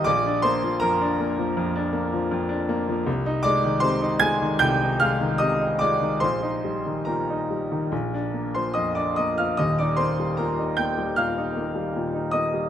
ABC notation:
X:1
M:4/4
L:1/16
Q:1/4=77
K:Eb
V:1 name="Grand piano"
[dd']2 [cc']2 [Bb]12 | z2 [dd']2 [cc']2 [aa']2 [gg']2 [ff']2 [ee']2 [dd']2 | [cc']4 [Bb]6- [Bb] [cc'] [ee'] [dd'] [ee'] [ff'] | [ee'] [dd'] [cc']2 [Bb]2 [gg']2 [ff']6 [ee']2 |]
V:2 name="Grand piano" clef=bass
B,,, D B, F, F,, D B, F, F,, D B, F, F,, D B, F, | C,, E A, E, C, E A, E, C,, E A, E, C, E A, E, | B,,, E G, E, B,, E G, E, B,,, D B, F, F,, D B, F, | [E,,,E,,] E B, G, B,, E B, G, B,, E B, G, B,, E B, G, |]